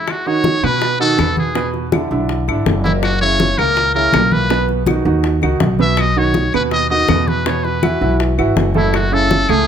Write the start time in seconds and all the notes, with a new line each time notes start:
Already playing: E4
0.08 F#4, high bongo, high conga, claves
0.26 D#3 D#4 F#4 C#5, high conga
0.44 high bongo, high conga
0.63 B2 B3 B4, high conga, claves
0.81 high bongo, high conga
0.99 D#3 D#4 F#4 A4, high conga
1.18 E2 B2 B3 B4, high bongo, low bongo, high conga, claves
1.37 G#4, high conga
1.55 B2 B3 B4, high bongo, high conga
1.74 high bongo, high conga
1.92 D3 D4 E4, high bongo, high conga, claves
2.11 B1 D3 D4 E4, high bongo
2.29 high bongo, high conga
2.48 G#1 D3 D4 E4, high bongo, high conga, claves
2.66 F#1, high bongo, low bongo, high conga
2.84 A#2 A#3 E4 A#4, high conga
3.03 F#4, high bongo, high conga, claves
3.21 C#3 C#4 E4 C#5, high conga
3.40 high bongo, high conga
3.58 C#2 A#2 A#3 A#4, high conga, claves
3.76 high bongo, high conga
3.94 C#3 C#4 E4 A#4, high conga
4.12 B1 A#2 A#3 A#4, high bongo, low bongo, high conga, claves
4.32 B4, high conga
4.49 B2 B3 B4, high bongo, high conga
4.68 high bongo, high conga
4.86 D#3 D#4 F#4, high bongo, high conga, claves
5.05 D#2 D#3 D#4 F#4, high bongo
5.23 high bongo, high conga
5.42 C#2 D#3 D#4 F#4, high bongo, high conga, claves
5.60 B1, high bongo, low bongo, high conga
5.79 B2 B3 B4 E5, high conga
5.97 D#5, high bongo, high conga, claves
6.16 D#3 D#4 F#4 C#5, high conga
6.34 high bongo, high conga
6.53 D#2 B2 B3 B4, high conga, claves
6.71 D#5, high bongo, high conga
6.90 D#3 D#4 F#4 D#5, high conga
7.08 E2 B2 B3 B4, high bongo, low bongo, high conga, claves
7.28 B4, high conga
7.46 B2 B3 B4 C#5, high bongo, high conga
7.64 B4, high bongo, high conga
7.83 E3 E4 F#4, high bongo, high conga, claves
8.01 B1 E3 E4 F#4, high bongo
8.19 high bongo, high conga
8.38 G#1 E3 E4 F#4, high bongo, high conga, claves
8.56 F#1, high bongo, low bongo, high conga
8.74 A2 A3 E4 A4, high conga
8.94 F#4, high bongo, high conga, claves
9.11 C#3 C#4 E4 A4, high conga
9.31 high bongo, high conga
9.49 C#2 A2 A3 G#4 A4, high conga, claves